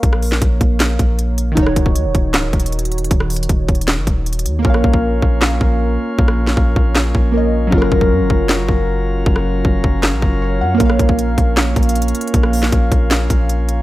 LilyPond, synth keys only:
\new Staff \with { instrumentName = "Synth keys" } { \time 4/4 \key bes \minor \tempo 4 = 156 << { r1 | r1 | r1 | r1 |
r1 | r1 | r2. des''8 ges''8 | r1 |
r1 | } \\ { <bes bes' des'' f''>1 | <ees ees' ges' des''>1~ | <ees ees' ges' des''>1 | <bes bes' des'' f''>1~ |
<bes bes' des'' f''>2. <bes bes' des'' ees''>4 | <ges des' f' bes'>1~ | <ges des' f' bes'>1 | <bes bes' des'' f''>1~ |
<bes bes' des'' f''>1 | } >> }